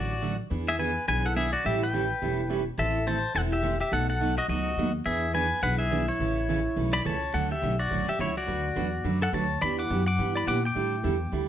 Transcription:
Already playing: upright bass A1, steel-string acoustic guitar D3 F#3 A3 C#4 F#4, pedal steel guitar F#4 D5
0.22 steel-string acoustic guitar D3 F#3 A3 C#4 F#4
0.50 upright bass E2, steel-string acoustic guitar E3 B3 D4 G#4
0.68 pedal steel guitar G#4 E5
0.78 steel-string acoustic guitar E3 B3 D4 G#4, pedal steel guitar B4 G#5
1.07 upright bass B1, steel-string acoustic guitar E3 B3 D4 G#4, pedal steel guitar B4 G#5
1.26 pedal steel guitar A4 F#5
1.35 steel-string acoustic guitar E3 B3 D4 G#4, pedal steel guitar G#4 E5
1.53 pedal steel guitar F#4 D5
1.64 upright bass A1, steel-string acoustic guitar E3 G3 C#4 E4 A4, pedal steel guitar G4 E5
1.83 pedal steel guitar B4 G5
1.93 steel-string acoustic guitar E3 G3 C#4 E4 A4
2.22 upright bass E1, steel-string acoustic guitar E3 G3 C#4 E4 A4
2.49 steel-string acoustic guitar E3 G3 C#4 E4 A4
2.77 upright bass A1, steel-string acoustic guitar E3 A3 C4 E4 A4, pedal steel guitar A4 E5
3.06 steel-string acoustic guitar E3 A3 C4 E4 A4, pedal steel guitar C5 A5
3.34 upright bass E1, steel-string acoustic guitar E3 A3 C4 E4 A4, pedal steel guitar A4 F#5
3.52 pedal steel guitar G4 E5
3.62 steel-string acoustic guitar E3 A3 C4 E4 A4
3.80 pedal steel guitar G4 E5
3.91 upright bass B1, steel-string acoustic guitar B2 F#3 A3 D#4 F#4, pedal steel guitar A4 F#5
4.09 pedal steel guitar A4 F#5
4.20 steel-string acoustic guitar B2 F#3 A3 D#4 F#4
4.38 pedal steel guitar F#4 D#5
4.48 upright bass C#2, steel-string acoustic guitar B2 F#3 A3 D#4 F#4, pedal steel guitar F#4 D#5
4.77 upright bass D#2, steel-string acoustic guitar B2 F#3 A3 D#4 F#4
5.06 upright bass E2, steel-string acoustic guitar E3 B3 D4 G#4, pedal steel guitar G#4 E5
5.34 steel-string acoustic guitar E3 B3 D4 G#4, pedal steel guitar B4 G#5
5.62 upright bass B1, steel-string acoustic guitar E3 B3 D4 G#4, pedal steel guitar B4 F#5
5.79 pedal steel guitar G#4 E5
5.91 steel-string acoustic guitar E3 B3 D4 G#4
6.08 pedal steel guitar E4 C#5
6.20 upright bass A1, steel-string acoustic guitar C#3 E3 A3 C#4 A4
6.49 steel-string acoustic guitar C#3 E3 A3 C#4 A4
6.76 upright bass B1, steel-string acoustic guitar C#3 E3 A3 C#4 A4
6.93 pedal steel guitar D5 B5
7.05 upright bass C#2, steel-string acoustic guitar C#3 E3 A3 C#4 A4, pedal steel guitar C#5 A5
7.33 upright bass D2, steel-string acoustic guitar D3 F#3 A3 C#4 F#4, pedal steel guitar A4 F#5
7.51 pedal steel guitar G4 E5
7.62 upright bass B1, steel-string acoustic guitar D3 F#3 A3 C#4 F#4
7.79 pedal steel guitar F#4 D5
7.90 upright bass A1, steel-string acoustic guitar D3 F#3 A3 C#4 F#4
8.08 pedal steel guitar G4 E5, muted upright bass stroke
8.19 upright bass C#2, steel-string acoustic guitar D3 F#3 A3 C#4 F#4, pedal steel guitar E4 C#5
8.37 pedal steel guitar F#4 D5
8.47 upright bass D2, steel-string acoustic guitar D3 F#3 A3 D4 F#4 B4
8.75 upright bass E2, steel-string acoustic guitar D3 F#3 A3 D4 F#4 B4
9.04 upright bass F#2, steel-string acoustic guitar D3 F#3 A3 D4 F#4 B4
9.22 pedal steel guitar A4 F#5
9.33 upright bass D2, steel-string acoustic guitar D3 F#3 A3 D4 F#4 B4, pedal steel guitar C#5 A5
9.61 upright bass E2, steel-string acoustic guitar E3 B3 D4 G4, pedal steel guitar D5 B5
9.79 pedal steel guitar F#5 D6
9.90 upright bass F#2, steel-string acoustic guitar E3 B3 D4 G4
10.06 pedal steel guitar F#5 D6
10.18 upright bass G2, steel-string acoustic guitar E3 B3 D4 G4
10.35 pedal steel guitar D5 B5
10.46 upright bass A#2, steel-string acoustic guitar E3 B3 D4 G4, pedal steel guitar F#5 D6
10.65 pedal steel guitar G5 D6
10.75 upright bass A2, steel-string acoustic guitar D3 G3 D4 E4 A4
11.03 upright bass E2, steel-string acoustic guitar D3 G3 D4 E4 A4
11.32 upright bass D2, steel-string acoustic guitar D3 G3 D4 E4 A4

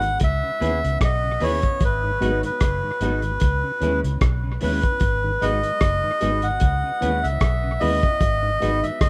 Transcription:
Already playing: fingered electric bass G#1, melodica F#5
0.02 tonewheel organ G#2 D#3, closed hi-hat
0.20 fingered electric bass C#2, kick, closed hi-hat
0.24 melodica E5
0.43 tonewheel organ C#3
0.60 fingered electric bass D#2, tonewheel organ E3 B3 C#4, clean electric guitar B3 E4 G#4 B4, upright piano C#4 E4 G#4 B4, closed hi-hat
0.84 fingered electric bass C#2, tonewheel organ C#3, closed hi-hat
1.01 fingered electric bass B1, melodica D#5, kick, cross-stick, closed hi-hat
1.24 tonewheel organ C#3
1.40 fingered electric bass D#2, tonewheel organ E3 B3 C#4, clean electric guitar B3 E4 G#4 B4, upright piano C#4 E4 G#4 B4, melodica C#5, open hi-hat
1.62 tonewheel organ C#3, kick, closed hi-hat
1.80 fingered electric bass G#1, kick, closed hi-hat
1.85 melodica B4
2.03 tonewheel organ G#2 D#3
2.20 fingered electric bass G#1, tonewheel organ F#3 G#3 B3, clean electric guitar B3 D#4 F#4 B4, upright piano D#4 F#4 G#4 B4, closed hi-hat
2.43 tonewheel organ G#2 D#3, melodica B4, closed hi-hat
2.60 fingered electric bass F#1, kick, cross-stick, closed hi-hat
2.83 tonewheel organ G#2 D#3
3.01 fingered electric bass G#1, tonewheel organ F#3 G#3 B3, clean electric guitar B3 D#4 F#4 B4, upright piano D#4 F#4 G#4 B4, closed hi-hat
3.22 tonewheel organ G#2 D#3, closed hi-hat
3.40 fingered electric bass C#2, kick, closed hi-hat
3.64 tonewheel organ C#3
3.80 fingered electric bass D#2, tonewheel organ E3 B3 C#4, clean electric guitar G#3 C#4 E4 B4, upright piano C#4 E4 G#4 B4, closed hi-hat
4.04 fingered electric bass C#2, tonewheel organ C#3, closed hi-hat
4.21 fingered electric bass B1, kick, cross-stick, closed hi-hat
4.43 tonewheel organ C#3
4.61 fingered electric bass D#2, tonewheel organ E3 B3 C#4, clean electric guitar G#3 C#4 E4 B4, upright piano C#4 E4 G#4 B4, melodica B4, open hi-hat
4.82 tonewheel organ C#3, kick, closed hi-hat
5.00 fingered electric bass G#1, kick, closed hi-hat
5.24 tonewheel organ G#2 D#3
5.41 fingered electric bass G#1, tonewheel organ F#3 G#3 B3, clean electric guitar G#3 D#4 F#4 B4, upright piano D#4 F#4 G#4 B4, melodica D#5, closed hi-hat
5.63 tonewheel organ G#2 D#3, closed hi-hat
5.81 fingered electric bass F#1, kick, cross-stick, closed hi-hat
6.03 tonewheel organ G#2 D#3
6.20 fingered electric bass G#1, tonewheel organ F#3 G#3 B3, clean electric guitar G#3 D#4 F#4 B4, upright piano D#4 F#4 G#4 B4, closed hi-hat
6.42 tonewheel organ G#2 D#3, melodica F#5, closed hi-hat
6.60 fingered electric bass C#2, kick, closed hi-hat
6.84 tonewheel organ C#3
7.01 fingered electric bass D#2, tonewheel organ E3 B3 C#4, clean electric guitar G#3 C#4 E4 B4, upright piano C#4 E4 G#4 B4, closed hi-hat
7.23 fingered electric bass C#2, tonewheel organ C#3, melodica E5, closed hi-hat
7.41 fingered electric bass B1, kick, cross-stick, closed hi-hat
7.64 tonewheel organ C#3
7.80 fingered electric bass D#2, tonewheel organ E3 B3 C#4, clean electric guitar G#3 C#4 E4 B4, upright piano C#4 E4 G#4 B4, melodica D#5, open hi-hat
8.02 tonewheel organ C#3, kick, closed hi-hat
8.20 fingered electric bass G#1, kick, closed hi-hat
8.43 tonewheel organ G#2 D#3
8.60 fingered electric bass G#1, tonewheel organ F#3 G#3 B3, clean electric guitar B3 D#4 F#4 B4, upright piano D#4 F#4 G#4 B4, closed hi-hat
8.83 tonewheel organ G#2 D#3, melodica E5, closed hi-hat
9.01 fingered electric bass F#1, melodica D#5, kick, cross-stick, closed hi-hat

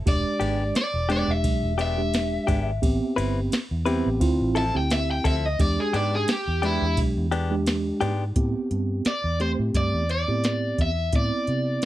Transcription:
0.06 fingered electric bass E1, tine electric piano G#3 D4 G4, overdriven electric guitar D5, kick, ride
0.40 fingered electric bass G#1, clean electric guitar G#3 B3 D4 G4, ride
0.75 overdriven electric guitar D5, snare, ride
0.94 fingered electric bass E1
1.09 tine electric piano G#3 D4 G4, clean electric guitar G#3 B3 D4 G4, overdriven electric guitar D5, ride
1.28 fingered electric bass E1, overdriven electric guitar E5
1.44 fingered electric bass B1, kick, ride
1.63 fingered electric bass E1
1.78 clean electric guitar G#3 B3 D4 G4, overdriven electric guitar E5, ride
1.98 tine electric piano G#3 D4 G4
2.14 snare, ride
2.47 fingered electric bass G#1, clean electric guitar G#3 B3 D4 G4, kick, ride
2.82 fingered electric bass A1, tine electric piano B3 C4 G4, kick, ride
3.16 fingered electric bass G1, clean electric guitar G3 C4 E4 B4, ride
3.52 snare, ride
3.71 fingered electric bass E2
3.86 clean electric guitar G3 C4 E4 B4, tine electric piano B3 C4 G4, ride
4.06 fingered electric bass A1
4.20 fingered electric bass D2, tine electric piano C4 E4 F4, kick, ride
4.40 fingered electric bass A1
4.55 clean electric guitar F3 C4 E4 A4, overdriven electric guitar A5, ride
4.74 fingered electric bass D2, tine electric piano C4 E4 G4, overdriven electric guitar G5
4.90 overdriven electric guitar E5, snare, ride
5.11 overdriven electric guitar G5
5.24 fingered electric bass D2, clean electric guitar F3 C4 E4 A4, overdriven electric guitar E5, kick, ride
5.46 overdriven electric guitar D#5
5.59 fingered electric bass E2, tine electric piano G#3 D4 G4, overdriven electric guitar D5, kick, ride
5.80 overdriven electric guitar G#4
5.93 fingered electric bass G#2, clean electric guitar G#3 B3 D4 G4, overdriven electric guitar D5, ride
6.15 overdriven electric guitar G#4
6.28 overdriven electric guitar G4, snare, ride
6.48 fingered electric bass E2
6.62 tine electric piano G#3 D4 G4, clean electric guitar G#3 B3 D4 G4, overdriven electric guitar E4, ride
6.82 fingered electric bass E2
6.97 fingered electric bass B1, kick, ride
7.17 fingered electric bass E2
7.32 clean electric guitar G#3 B3 D4 G4, ride
7.51 tine electric piano G#3 D4 G4
7.66 snare, ride
8.01 fingered electric bass G#2, clean electric guitar G#3 B3 D4 G4, ride
8.36 fingered electric bass A2, tine electric piano B3 C4 G4, kick, closed hi-hat
8.71 fingered electric bass G2, closed hi-hat
9.05 overdriven electric guitar D5, muted fingered electric bass stroke, snare, closed hi-hat
9.24 fingered electric bass E2
9.40 tine electric piano A3 C4 G4, overdriven electric guitar C5, closed hi-hat
9.59 fingered electric bass A2
9.74 fingered electric bass G2, overdriven electric guitar D5, kick, closed hi-hat
9.94 fingered electric bass E2
10.09 overdriven electric guitar D5, closed hi-hat
10.28 fingered electric bass A2, tine electric piano B3 C4 G4
10.44 snare, closed hi-hat
10.78 fingered electric bass E2, overdriven electric guitar E5, kick, closed hi-hat
11.13 fingered electric bass A2, tine electric piano B3 C4 E4, overdriven electric guitar D5, kick, closed hi-hat
11.47 fingered electric bass C3, closed hi-hat
11.82 closed hi-hat

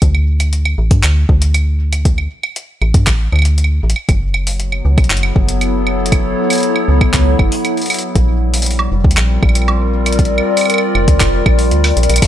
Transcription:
0.02 fm bass D2, kick, closed hi-hat
0.15 high woodblock
0.40 closed hi-hat, high woodblock
0.53 closed hi-hat
0.65 high woodblock
0.78 fm bass A1
0.91 fm bass G2, kick, closed hi-hat
1.04 fm bass D2, clap, closed hi-hat, high woodblock
1.29 fm bass D2, kick
1.42 closed hi-hat
1.54 closed hi-hat, high woodblock
1.93 closed hi-hat, high woodblock
2.05 kick, closed hi-hat
2.18 high woodblock
2.43 high woodblock
2.56 closed hi-hat
2.82 fm bass A1, high woodblock
2.94 fm bass G2, kick, closed hi-hat
3.07 fm bass A1, kick, clap, closed hi-hat, high woodblock
3.32 fm bass D2, high woodblock
3.36 high woodblock
3.39 high woodblock
3.42 closed hi-hat, high woodblock
3.58 closed hi-hat
3.64 high woodblock
3.83 fm bass A1
3.90 closed hi-hat
3.96 high woodblock
4.09 fm bass F#1, ambient pad F#3, kick, closed hi-hat, high woodblock
4.34 high woodblock
4.43 ambient pad B3, open hi-hat
4.60 closed hi-hat
4.72 high woodblock
4.83 fm bass C#2, ambient pad E4 A4
4.98 fm bass B1, kick, closed hi-hat, high woodblock
5.04 closed hi-hat
5.10 fm bass F#1, clap, closed hi-hat
5.17 closed hi-hat
5.23 high woodblock
5.36 fm bass F#1, kick
5.49 closed hi-hat
5.55 ambient pad C#5
5.61 closed hi-hat, high woodblock
5.87 high woodblock
6.06 closed hi-hat
6.12 kick, closed hi-hat, high woodblock
6.50 open hi-hat, high woodblock
6.53 open hi-hat
6.55 open hi-hat
6.58 open hi-hat
6.60 closed hi-hat, open hi-hat
6.76 high woodblock
6.88 fm bass C#2
7.01 fm bass B1, kick, high woodblock
7.14 fm bass C#2, kick, clap, closed hi-hat
7.39 fm bass F#1, kick, high woodblock
7.52 open hi-hat
7.65 closed hi-hat, high woodblock
7.77 open hi-hat
7.82 open hi-hat
7.86 open hi-hat
7.90 open hi-hat, high woodblock
7.94 open hi-hat
7.99 open hi-hat
8.15 fm bass A#1, ambient pad G3, kick, closed hi-hat
8.46 ambient pad C4
8.54 open hi-hat
8.62 open hi-hat
8.66 closed hi-hat
8.71 open hi-hat
8.79 ambient pad F4, high woodblock
8.92 fm bass F1
9.04 fm bass D2, kick
9.11 ambient pad A#4, closed hi-hat
9.17 fm bass A#1, clap, closed hi-hat, high woodblock
9.43 fm bass A#1, kick, high woodblock
9.49 high woodblock
9.55 closed hi-hat, high woodblock
9.60 ambient pad D5, high woodblock
9.68 high woodblock
10.06 closed hi-hat, high woodblock
10.12 closed hi-hat
10.19 kick, closed hi-hat
10.25 closed hi-hat
10.38 high woodblock
10.57 open hi-hat, high woodblock
10.61 high woodblock
10.65 high woodblock
10.70 closed hi-hat, high woodblock
10.74 high woodblock
10.78 high woodblock
10.95 fm bass F1, high woodblock
11.08 fm bass D2, kick, closed hi-hat
11.21 fm bass F1, kick, clap, closed hi-hat, high woodblock
11.46 fm bass A#1, kick, high woodblock
11.59 open hi-hat
11.71 fm bass D2, closed hi-hat
11.84 open hi-hat, high woodblock
11.97 fm bass A#1, closed hi-hat
12.03 closed hi-hat
12.10 fm bass A#1, closed hi-hat, high woodblock
12.14 closed hi-hat, high woodblock
12.18 high woodblock
12.22 fm bass A1, ambient pad A3, kick, open hi-hat, crash, high woodblock

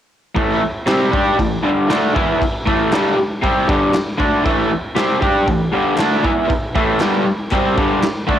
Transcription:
0.35 overdriven electric guitar A2 E3 A3, kick, crash
0.61 muted overdriven electric guitar stroke
0.86 overdriven electric guitar C3 G3 C4, snare, clap, crash
1.11 overdriven electric guitar G3 D4 G4, kick
1.38 overdriven electric guitar A2 E3, kick, crash
1.63 overdriven electric guitar G2 D3 G3
1.89 overdriven electric guitar D3 A3 D4, snare, clap, crash
2.14 overdriven electric guitar E3 B3 E4, kick
2.41 muted overdriven electric guitar stroke, kick, crash
2.66 overdriven electric guitar A2 E3 A3, kick
2.92 overdriven electric guitar G2 D3 G3, snare, clap, crash
3.17 muted overdriven electric guitar stroke
3.42 overdriven electric guitar C3 G3 C4, kick, crash
3.68 overdriven electric guitar G2 D3 G3, kick
3.94 muted overdriven electric guitar stroke, snare, clap, crash
4.18 overdriven electric guitar D3 A3 D4, kick
4.44 overdriven electric guitar A2 E3 A3, kick, crash
4.70 muted overdriven electric guitar stroke
4.95 overdriven electric guitar C3 G3 C4, snare, clap, crash
5.20 overdriven electric guitar G3 D4 G4, kick
5.47 overdriven electric guitar A2 E3, kick, crash
5.72 overdriven electric guitar G2 D3 G3
5.97 overdriven electric guitar D3 A3 D4, snare, clap, crash
6.23 overdriven electric guitar E3 B3 E4, kick
6.49 muted overdriven electric guitar stroke, kick, crash
6.75 overdriven electric guitar A2 E3 A3, kick
7.00 overdriven electric guitar G2 D3 G3, snare, clap, crash
7.26 muted overdriven electric guitar stroke
7.51 overdriven electric guitar C3 G3 C4, kick, clap, crash
7.76 overdriven electric guitar G2 D3 G3, kick
8.02 muted overdriven electric guitar stroke, snare, clap, crash
8.27 overdriven electric guitar D3 A3 D4, kick

